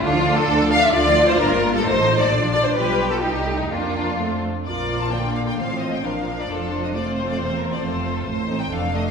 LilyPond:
<<
  \new Staff \with { instrumentName = "Violin section" } { \time 2/4 \key d \minor \tempo 4 = 132 f'8. a'8. f''16 e''16 | \key bes \major d''8. c''16 bes'8. a'16 | c''8. d''8. d''16 c''16 | b'8. a'16 g'8. ees'16 |
f'4. r8 | d''8. a''16 g''8 f''16 g''16 | f''8 ees''16 g''16 f''8. d''16 | a'8. ees''16 d''8 c''16 d''16 |
c''8 bes'16 d''16 c''8. a'16 | c''8. g''16 f''8 ees''16 f''16 | }
  \new Staff \with { instrumentName = "Violin section" } { \time 2/4 \key d \minor << { f'8. a'8. f''16 e''16 | \key bes \major d''8. c''16 bes'8. a'16 | c''8. d''8. d''16 c''16 | b'8. a'16 g'8. ees'16 |
f'4. r8 | bes'4 d''4 | c''4 bes'4 | c''2~ |
c''4 a'4 | r8 c''8 a'8 a'8 | } \\ { r2 | r2 | r2 | r2 |
r2 | f'2 | f'4 d'4 | f'4 f'4~ |
f'4 f'4 | r8 ees'8 d'8 d'8 | } >> }
  \new Staff \with { instrumentName = "Viola section" } { \time 2/4 \key d \minor << { d'16 f'16 d'16 f'16 d'16 f'16 d'16 f'16 | \key bes \major d'16 f'16 d'16 f'16 d'16 bes16 d'16 bes16 | f'16 a'16 f'16 a'16 f'16 d'16 f'16 d'16 | f'4 ees'4 |
d'4 c'8 r8 | f'4 bes4 | c'4 d'4 | d'4 c'4~ |
c'4 c'4 | r8 c'8 d'8 d'8 | } \\ { d16 f16 d16 f16 d16 f16 d16 f16 | d16 f16 d16 f16 bes16 g16 bes16 g16 | a16 f16 a16 f16 d16 f16 d16 f16 | g4 g8 a8 |
bes4 a8 r8 | f4 d4 | f4 f4~ | f4 a4~ |
a4 a4 | r8 a8 a8 a8 | } >> }
  \new Staff \with { instrumentName = "Cello section" } { \clef bass \time 2/4 \key d \minor d'2 | \key bes \major f'2 | ees'4 d'4 | g'4 ees'4 |
d'4. r8 | bes,2 | a,4 bes,4 | f,2 |
e,4 f,4 | a,4 f,4 | }
  \new Staff \with { instrumentName = "Double bass section" } { \clef bass \time 2/4 \key d \minor d,4 d,4 | \key bes \major d,4 g,,4 | a,,4 bes,,4 | b,,4 c,4 |
f,4. r8 | bes,,2 | a,,4 bes,,4 | f,,2 |
e,,4 f,,4 | a,,4 f,,4 | }
>>